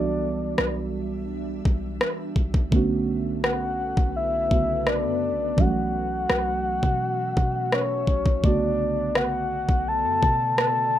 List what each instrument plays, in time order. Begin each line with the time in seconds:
Already playing: 808-style bass B1, synth keys E3 G3 B3 D4 F#4, ambient pad G3 D4 E5, soft synth lead D5
0.58 808-style bass B1, cross-stick
1.65 808-style bass B1, kick
2.01 cross-stick
2.36 808-style bass B1, kick
2.54 808-style bass B1, kick
2.71 808-style bass B1, synth keys D3 A3 B3 C#4, ambient pad B3 A4 B4, kick
2.76 synth keys F#4
3.44 soft synth lead F#5, cross-stick
3.97 808-style bass B1, kick
4.16 soft synth lead E5
4.51 808-style bass B1, synth keys C#3 D3 A3 B3 F#4, kick
4.87 soft synth lead D5, cross-stick
5.05 808-style bass F#2
5.32 808-style bass B1
5.56 808-style bass B1, synth keys E3 F#3 G3 C#4, ambient pad A3 F#4 E5, soft synth lead F#5, kick
5.61 synth keys F#4
5.65 synth keys A3
6.30 808-style bass B1, cross-stick
6.83 808-style bass B2, kick
7.37 808-style bass B2, kick
7.72 soft synth lead C#5, cross-stick
8.07 808-style bass B1, kick
8.26 808-style bass B1, kick
8.42 808-style bass B1, synth keys C#3 A3 B3, ambient pad B3 A4 D5, soft synth lead D5, kick
8.47 synth keys D3 F#4
9.15 soft synth lead F#5, cross-stick
9.69 808-style bass B1, kick
9.88 soft synth lead A5
10.05 808-style bass F#2
10.23 808-style bass B2, kick
10.58 soft synth lead A5, cross-stick